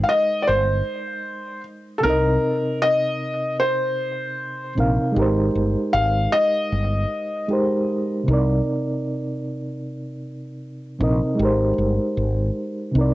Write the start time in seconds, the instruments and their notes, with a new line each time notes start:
Already playing: reed electric piano G#3 D#4 A#4 C5 G5
0.03 felt piano F5
0.09 felt piano D#5
0.42 felt piano D5
0.47 fretless electric bass G1, felt piano C5
1.98 reed electric piano C3, felt piano A4
2.02 fretless electric bass C2, reed electric piano C4 D#4, felt piano A#4
2.07 reed electric piano A#4 D#5
2.82 felt piano D#5
3.60 felt piano C5
4.75 fretless electric bass A#1, reed electric piano C3 C4 D#4 A#4
4.80 reed electric piano F5
5.12 reed electric piano G#3 D#4
5.16 fretless electric bass G#1, reed electric piano G4 A#4
5.22 reed electric piano C5
5.55 fretless electric bass G1
5.93 fretless electric bass G#1, felt piano F5
6.32 felt piano D#5
6.72 fretless electric bass G1
7.48 reed electric piano G#3 D#4 G4 A#4
7.53 reed electric piano C5
8.23 reed electric piano C3 C4
8.28 fretless electric bass C2, reed electric piano D#4 A#4
8.33 reed electric piano D5
10.99 fretless electric bass A#1, reed electric piano C3 C4 D#4 A#4
11.04 reed electric piano D#5
11.35 reed electric piano G#3 D#4
11.39 fretless electric bass G#1, reed electric piano G4 A#4
11.45 reed electric piano C5
11.78 fretless electric bass G1
12.17 fretless electric bass G#1
12.91 reed electric piano C3 C4
12.95 fretless electric bass C2, reed electric piano D#4 A#4
13.01 reed electric piano D5